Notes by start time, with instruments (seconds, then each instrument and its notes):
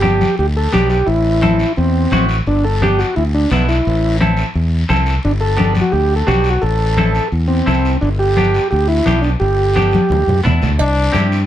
Already playing: fingered electric bass G1, transistor combo organ G4
0.02 clean electric guitar B3 D4 G4, high conga, short guiro
0.21 high conga, short guiro
0.38 fingered electric bass D2, transistor combo organ G4, long guiro
0.57 transistor combo organ A4
0.72 fingered electric bass B1, clean electric guitar B3 D4 G4, transistor combo organ G4, high conga, short guiro
0.90 transistor combo organ G4, short guiro
1.07 fingered electric bass A1, transistor combo organ E4, long guiro
1.42 clean electric guitar C4 E4 A4, high conga, short guiro
1.59 short guiro
1.76 fingered electric bass E2, transistor combo organ C4, long guiro
2.11 fingered electric bass A1, clean electric guitar C4 E4 F#4, high conga, short guiro
2.29 short guiro
2.47 fingered electric bass G1, transistor combo organ D4, long guiro
2.65 transistor combo organ A4
2.82 clean electric guitar B3 D4 G4, transistor combo organ G4, high conga, short guiro
2.99 transistor combo organ F#4, short guiro
3.16 fingered electric bass D2, transistor combo organ E4, long guiro
3.35 transistor combo organ D4
3.51 fingered electric bass B1, clean electric guitar B3 D4 E4, transistor combo organ B3, high conga, short guiro
3.68 transistor combo organ E4, short guiro
3.85 fingered electric bass A1, long guiro
4.20 clean electric guitar C4 E4 A4, high conga, short guiro
4.37 short guiro
4.54 fingered electric bass E2, long guiro
4.89 fingered electric bass C2, clean electric guitar C4 E4 A4, high conga, short guiro
5.06 short guiro
5.23 fingered electric bass G1, transistor combo organ D4, long guiro
5.41 transistor combo organ A4
5.57 clean electric guitar B3 D4 G4, high conga, short guiro
5.75 high conga, short guiro
5.81 transistor combo organ F#4
5.92 fingered electric bass D2, transistor combo organ G4, long guiro
6.16 transistor combo organ A4
6.27 fingered electric bass B1, clean electric guitar B3 D4 F#4, transistor combo organ G4, high conga, short guiro
6.44 short guiro
6.50 transistor combo organ F#4
6.62 fingered electric bass A1, transistor combo organ A4, long guiro
6.97 clean electric guitar C4 E4 A4, high conga, short guiro
7.15 short guiro
7.32 fingered electric bass E2, long guiro
7.48 transistor combo organ C4
7.66 fingered electric bass C2, clean electric guitar C4 E4 A4, high conga, short guiro
7.85 short guiro
8.01 fingered electric bass G1, transistor combo organ D4, long guiro
8.19 transistor combo organ G4
8.37 clean electric guitar B3 D4 G4, high conga, short guiro
8.54 short guiro
8.71 fingered electric bass D2, transistor combo organ G4, long guiro
8.88 transistor combo organ E4
9.06 fingered electric bass B1, clean electric guitar B3 D4 G4, high conga, short guiro
9.22 transistor combo organ D4, short guiro
9.40 fingered electric bass G1, transistor combo organ G4, long guiro
9.75 clean electric guitar B3 D4 G4, high conga, short guiro
9.91 high conga, short guiro
10.09 fingered electric bass D2, high conga, long guiro
10.27 fingered electric bass F#2, low conga
10.44 fingered electric bass E2, clean electric guitar B3 D4 E4, low conga, short guiro
10.62 fingered electric bass D2, low conga, short guiro
10.79 fingered electric bass C2, trombone D4, cowbell, long guiro
11.12 fingered electric bass G2, clean electric guitar C4 E4 G4, high conga, short guiro
11.32 short guiro